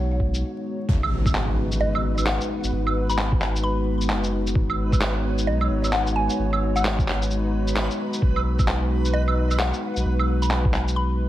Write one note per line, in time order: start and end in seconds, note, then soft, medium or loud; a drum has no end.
0.00 0.43 B1 loud
0.00 0.85 G#3 medium
0.00 0.85 B3 medium
0.00 0.85 D#4 medium
0.00 0.85 F#4 medium
0.00 0.86 C#5 medium
0.20 kick medium
0.34 shaker medium
0.87 2.39 G#1 loud
0.87 11.29 G#3 medium
0.87 11.29 B3 medium
0.87 11.29 D#4 medium
0.87 11.29 F#4 medium
0.87 11.29 B4 medium
0.87 4.52 B4 medium
0.87 kick loud
0.87 impact medium
1.03 claves medium
1.26 kick loud
1.26 claves soft
1.26 shaker medium
1.35 clap loud
1.72 shaker medium
1.81 2.05 D#5 medium
1.95 claves medium
2.18 claves soft
2.18 shaker medium
2.26 2.64 F#5 medium
2.26 clap loud
2.41 shaker soft
2.64 2.72 G#1 medium
2.64 shaker medium
2.72 4.12 G#1 loud
2.87 claves medium
3.09 3.33 B5 medium
3.09 shaker medium
3.18 clap loud
3.32 kick loud
3.42 clap medium
3.56 shaker medium
3.64 4.01 B5 medium
4.01 shaker medium
4.10 4.55 F#1 loud
4.10 clap loud
4.24 shaker soft
4.47 shaker medium
4.55 5.49 G#1 loud
4.55 8.18 C#5 medium
4.55 kick loud
4.70 claves medium
4.92 kick loud
4.92 claves soft
4.92 shaker medium
5.01 clap loud
5.38 shaker medium
5.47 5.69 B1 medium
5.47 5.72 D#5 medium
5.61 claves medium
5.70 6.28 G#1 medium
5.84 claves soft
5.84 shaker medium
5.93 6.30 F#5 medium
5.93 clap loud
6.07 shaker soft
6.16 6.40 G#5 medium
6.30 shaker medium
6.39 7.89 G#1 loud
6.53 claves medium
6.76 7.22 F#5 medium
6.76 claves soft
6.76 shaker medium
6.85 clap loud
6.99 kick loud
6.99 shaker soft
7.08 clap medium
7.22 shaker medium
7.31 shaker soft
7.68 shaker medium
7.76 clap loud
7.91 shaker soft
8.13 shaker medium
8.22 9.72 B1 loud
8.22 11.29 B4 medium
8.22 kick loud
8.36 claves medium
8.59 kick loud
8.59 claves soft
8.59 shaker medium
8.68 clap loud
9.05 shaker medium
9.14 9.38 D#5 medium
9.28 claves medium
9.51 claves soft
9.51 shaker medium
9.59 9.97 F#5 medium
9.59 clap loud
9.74 shaker soft
9.96 10.04 B1 medium
9.96 shaker medium
10.05 11.29 B1 loud
10.19 claves medium
10.42 10.66 B5 medium
10.42 shaker medium
10.51 clap loud
10.65 kick loud
10.74 clap medium
10.88 shaker medium
10.96 11.29 B5 medium